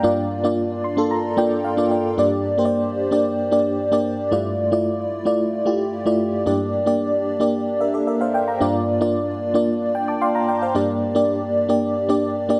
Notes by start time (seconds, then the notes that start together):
Already playing: G5
0.03 G2 A#3 D4 F4 D5
0.44 A#3 D4 F4 D5
0.84 C6
0.97 A#3 D4 F4 A4
1.11 A#5
1.37 A#3 D4 F4 D5 G5
1.64 F5
1.77 A#3 D4 F4 D5
1.91 D5
2.18 G2 A#3 D4 G4 D5
2.58 A#3 D4 G4 C5
2.65 D5
3.11 A#3 D4 G4 D5
3.51 A#3 D4 G4 D5
3.92 A#3 D4 G4 D5
4.31 G2 A3 E4 F4 D5
4.72 A3 E4 F4 D5
5.25 A3 E4 F4 D5
5.66 A3 E4 F4 G4
6.06 A3 E4 F4 D5
6.46 G2 A#3 D4 G4 D5
6.86 A#3 D4 G4 D5
7.40 A#3 D4 G4 D5
7.81 A#4 E5
7.94 A4 D5
8.07 A#4 E5
8.21 C5 F5
8.34 D5 G5
8.48 F5 A#5
8.60 G2 A#3 D4 F4 D5
9.01 A#3 D4 F4 D5
9.54 A#3 D4 F4 D5
9.95 G5
10.08 A5 D6
10.21 F5 G5 C6
10.35 F5 A#5
10.48 D5 G5
10.62 C5 F5
10.75 G2 A#3 D4 G4 D5
11.15 A#3 D4 G4 D5
11.69 A#3 D4 G4 D5
12.09 A#3 D4 G4 D5
12.49 A#3 D4 G4 D5